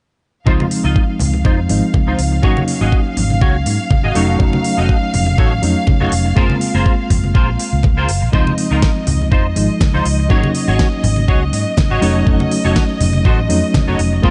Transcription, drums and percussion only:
0.47 kick loud
0.60 high conga medium
0.71 open hi-hat medium
0.96 kick loud
1.19 open hi-hat loud
1.19 low conga medium
1.33 high conga medium
1.45 kick loud
1.69 open hi-hat loud
1.94 kick loud
1.94 high conga medium
2.19 open hi-hat medium
2.43 kick loud
2.57 high conga medium
2.68 open hi-hat loud
2.92 kick loud
3.17 open hi-hat loud
3.17 low conga medium
3.30 high conga medium
3.41 kick loud
3.66 open hi-hat loud
3.91 kick loud
3.91 high conga medium
4.15 open hi-hat loud
4.40 kick loud
4.53 high conga medium
4.64 open hi-hat loud
4.89 kick loud
5.14 open hi-hat loud
5.14 low conga medium
5.26 high conga medium
5.38 kick loud
5.63 open hi-hat loud
5.87 kick loud
5.87 high conga medium
6.12 open hi-hat loud
6.37 kick loud
6.50 high conga medium
6.61 open hi-hat loud
6.86 kick loud
7.10 kick medium
7.10 open hi-hat loud
7.10 low conga medium
7.24 high conga medium
7.35 kick loud
7.59 open hi-hat loud
7.83 kick loud
7.83 high conga medium
8.09 open hi-hat loud
8.33 kick loud
8.47 high conga medium
8.58 open hi-hat loud
8.82 kick loud
8.82 snare loud
9.07 open hi-hat loud
9.07 low conga medium
9.22 high conga medium
9.32 kick loud
9.56 open hi-hat loud
9.81 kick loud
9.81 snare loud
9.81 high conga medium
10.05 open hi-hat loud
10.30 kick loud
10.44 high conga medium
10.55 open hi-hat medium
10.79 kick loud
10.79 snare loud
11.04 open hi-hat medium
11.04 low conga medium
11.16 high conga medium
11.28 kick loud
11.53 open hi-hat loud
11.77 kick loud
11.77 snare loud
11.77 high conga medium
12.02 open hi-hat medium
12.27 kick loud
12.40 high conga medium
12.51 open hi-hat medium
12.76 kick loud
12.76 snare loud
13.01 open hi-hat loud
13.01 low conga medium
13.13 high conga medium
13.25 kick loud
13.50 open hi-hat loud
13.74 kick loud
13.74 snare loud
13.74 high conga medium
13.99 open hi-hat medium
14.23 kick loud

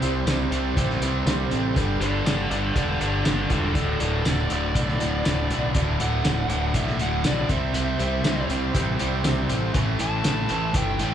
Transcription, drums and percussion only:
0.02 closed hi-hat medium
0.27 snare loud
0.27 closed hi-hat medium
0.27 tambourine loud
0.52 closed hi-hat medium
0.77 kick medium
0.77 closed hi-hat medium
0.90 snare soft
1.02 closed hi-hat medium
1.27 snare loud
1.27 closed hi-hat medium
1.27 tambourine loud
1.51 closed hi-hat medium
1.76 kick medium
1.76 closed hi-hat medium
2.01 closed hi-hat medium
2.26 snare loud
2.26 closed hi-hat medium
2.26 tambourine loud
2.51 closed hi-hat medium
2.76 kick medium
2.76 closed hi-hat medium
3.01 closed hi-hat medium
3.25 snare loud
3.25 closed hi-hat medium
3.25 tambourine loud
3.50 kick medium
3.50 closed hi-hat medium
3.75 kick medium
3.75 closed hi-hat medium
4.00 closed hi-hat medium
4.25 snare loud
4.25 closed hi-hat medium
4.25 tambourine loud
4.50 closed hi-hat medium
4.75 kick medium
4.75 closed hi-hat medium
4.88 snare soft
5.00 closed hi-hat medium
5.25 snare loud
5.25 closed hi-hat loud
5.25 tambourine loud
5.50 closed hi-hat medium
5.75 kick loud
5.75 closed hi-hat medium
6.00 closed hi-hat medium
6.25 snare loud
6.25 closed hi-hat loud
6.25 tambourine loud
6.50 closed hi-hat medium
6.74 kick medium
6.74 closed hi-hat medium
6.87 snare soft
6.99 closed hi-hat medium
7.24 snare loud
7.24 closed hi-hat medium
7.24 tambourine loud
7.49 kick medium
7.49 closed hi-hat medium
7.74 closed hi-hat medium
8.00 closed hi-hat medium
8.24 snare loud
8.24 closed hi-hat medium
8.24 tambourine loud
8.50 closed hi-hat medium
8.75 kick medium
8.75 closed hi-hat loud
8.99 closed hi-hat medium
9.24 snare loud
9.24 closed hi-hat medium
9.24 tambourine loud
9.49 closed hi-hat medium
9.74 kick loud
9.74 closed hi-hat medium
9.99 closed hi-hat medium
10.24 snare loud
10.24 closed hi-hat loud
10.24 tambourine loud
10.49 closed hi-hat medium
10.74 kick medium
10.74 closed hi-hat medium
10.99 closed hi-hat medium

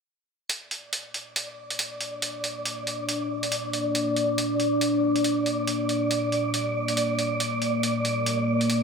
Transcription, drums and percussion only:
0.50 closed hi-hat medium
0.71 closed hi-hat soft
0.93 closed hi-hat medium
1.14 closed hi-hat soft
1.36 closed hi-hat medium
1.70 closed hi-hat soft
1.79 closed hi-hat medium
2.01 closed hi-hat soft
2.22 closed hi-hat medium
2.44 closed hi-hat soft
2.65 closed hi-hat medium
2.87 closed hi-hat soft
3.09 closed hi-hat medium
3.43 closed hi-hat soft
3.52 closed hi-hat medium
3.73 closed hi-hat soft
3.95 closed hi-hat medium
4.16 closed hi-hat soft
4.38 closed hi-hat medium
4.60 closed hi-hat soft
4.81 closed hi-hat medium
5.16 closed hi-hat soft
5.24 closed hi-hat medium
5.46 closed hi-hat soft
5.67 closed hi-hat medium
5.89 closed hi-hat soft
6.11 closed hi-hat medium
6.32 closed hi-hat soft
6.54 closed hi-hat medium
6.88 closed hi-hat soft
6.97 closed hi-hat medium
7.19 closed hi-hat soft
7.40 closed hi-hat medium
7.62 closed hi-hat soft
7.83 closed hi-hat medium
8.05 closed hi-hat soft
8.26 closed hi-hat medium
8.61 closed hi-hat soft
8.70 closed hi-hat medium

